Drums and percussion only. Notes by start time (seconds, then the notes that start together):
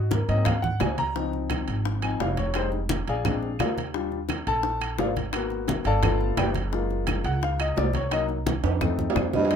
0.11 high bongo, high conga, high timbale, low timbale
0.29 high bongo, high conga, high timbale
0.45 high bongo, high conga, low conga, high timbale, claves
0.63 high bongo, high conga, low conga
0.80 high bongo, low bongo, high conga, high timbale, low timbale, claves
0.98 high conga, high timbale
1.16 high bongo, high conga
1.33 high bongo, high conga
1.50 high bongo, high conga, high timbale, low timbale, claves
1.68 high conga, high timbale
1.85 high bongo, high conga
2.02 high bongo, high conga, high timbale, claves
2.20 high bongo, low bongo, high conga, low timbale
2.37 high bongo, high conga, high timbale
2.54 high bongo, high conga, high timbale, claves
2.72 high bongo, high conga
2.89 high bongo, high conga, high timbale, low timbale
3.08 high bongo, high conga, high timbale
3.25 high bongo, high conga, low conga, high timbale, claves
3.42 high bongo, high conga
3.59 high bongo, low bongo, high conga, high timbale, low timbale, claves
3.78 high conga, high timbale
3.94 high bongo, high conga
4.12 high bongo, high conga
4.29 high bongo, high conga, high timbale, low timbale, claves
4.47 high conga, high timbale
4.63 high bongo, high conga
4.81 high bongo, high conga, high timbale, claves
4.99 high bongo, low bongo, high conga, low timbale
5.16 high bongo, high conga, high timbale
5.33 high bongo, high conga, high timbale, claves
5.50 high bongo, high conga
5.68 high bongo, high conga, high timbale, low timbale
5.84 high bongo, high conga, high timbale
6.03 high bongo, high conga, low conga, high timbale, claves
6.20 high bongo, high conga
6.37 high bongo, low bongo, high conga, high timbale, low timbale, claves
6.54 high conga, high timbale
6.72 high bongo, high conga
6.90 high bongo, high conga
7.07 high bongo, high conga, high timbale, low timbale, claves
7.24 high conga, high timbale
7.42 high bongo, high conga
7.59 high bongo, high conga, high timbale, claves
7.76 high bongo, low bongo, high conga, low timbale
7.93 high bongo, high conga, high timbale
8.11 high bongo, high conga, high timbale, claves
8.29 high bongo, high conga
8.46 high bongo, high conga, high timbale, low timbale
8.64 high bongo, high conga, high timbale
8.81 high bongo, high conga, low conga, claves
8.99 high bongo, high conga, low conga
9.10 low timbale
9.16 high bongo, low bongo, high conga, claves
9.33 high conga, low timbale
9.45 low timbale
9.51 high bongo, high conga, high timbale